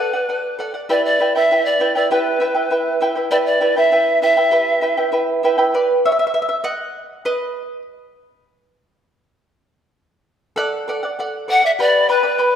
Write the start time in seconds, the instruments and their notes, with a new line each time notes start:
Already playing: charango A4, pan flute B4
0.00 charango D5 F#5
0.13 charango D5 F#5
0.29 charango A4 D5 F#5
0.59 charango A4 D5 F#5
0.74 charango D5 F#5
0.89 charango E4 G4 B4 E5 G5, pan flute D5
1.05 pan flute D5
1.20 charango E4 B4 E5 G5
1.35 charango E4 B4 G5, pan flute E5
1.51 charango E4 B4 E5 G5
1.65 pan flute D5
1.80 charango E4 B4 E5 G5
1.95 charango E4 B4 G5, pan flute D5
2.11 charango E4 G4 B4 E5 G5, pan flute B4
2.40 charango E4 B4 E5 G5
2.54 charango E4 B4 G5
2.70 charango E4 B4 E5 G5
3.01 charango E4 B4 E5 G5
3.15 charango E4 B4 G5
3.31 charango E4 G4 B4 E5 G5, pan flute D5
3.46 pan flute D5
3.60 charango E4 B4 E5 G5
3.76 charango E4 B4 G5, pan flute E5
3.92 charango E4 B4 E5 G5
4.22 charango E4 B4 E5 G5, pan flute E5
4.37 charango E4 B4 G5
4.51 charango E4 G4 B4 E5 G5
4.81 charango E4 B4 E5 G5
4.97 charango E4 B4 G5
5.12 charango E4 B4 E5 G5
5.43 charango E4 B4 E5 G5
5.58 charango E4 B4 G5
5.74 charango B4 D5
6.05 charango C#5 E5
6.12 charango E5
6.19 charango E5
6.27 charango E5
6.34 charango E5
6.42 charango E5
6.49 charango E5
6.64 charango D#5 F#5
7.25 charango B4 D#5
10.56 charango A4 D5 F#5
10.88 charango A4 D5 F#5
11.03 charango D5 F#5
11.19 charango A4 D5 F#5
11.48 charango A4 D5 F#5, pan flute F#5
11.62 charango D5 F#5, pan flute E5
11.79 charango G4 B4 D5 G5 B5, pan flute D5
12.09 charango B4 D5 G5 B5, pan flute B4
12.23 charango B4 D5 B5
12.38 charango B4 D5 G5 B5